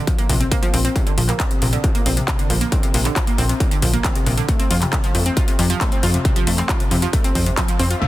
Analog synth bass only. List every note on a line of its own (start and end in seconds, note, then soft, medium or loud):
0.29 0.45 A#1 medium
0.74 0.89 A#1 loud
1.18 1.33 A#1 medium
1.62 1.77 A#1 loud
2.06 2.21 A#1 medium
2.50 2.65 A#1 loud
2.94 3.09 A#1 loud
3.38 3.53 A#1 loud
3.82 3.97 A#1 medium
4.27 4.42 A#1 loud
4.71 4.86 F2 loud
5.15 5.30 F2 loud
5.59 5.74 F2 medium
6.03 6.18 F2 loud
6.47 6.62 F2 loud
6.91 7.06 F2 loud
7.35 7.50 F2 loud
7.79 7.95 F2 medium
8.02 8.08 D2 medium